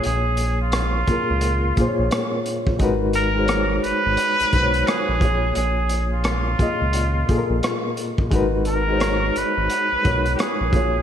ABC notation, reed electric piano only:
X:1
M:4/4
L:1/16
Q:"Swing 16ths" 1/4=87
K:G#dor
V:1 name="Reed electric piano"
[A,,A,EGc]4 z2 [A,,A,EGA]3 z [A,,A,EG^Bc]4- [A,,A,EGBc] z | [G,DFAB]2 z [G,DFG^Bc]6 z [G,DF=B^Bc]4 [A,,A,EGc]2- | [A,,A,EGc]4 z2 [A,,A,EGd]3 z [A,,A,EG=A^A]4- [A,,A,EG=A^A] z | [G,DFAB]2 z [G,DFG^Bc]6 z [G,DFAc]4 [A,,A,EGc]2 |]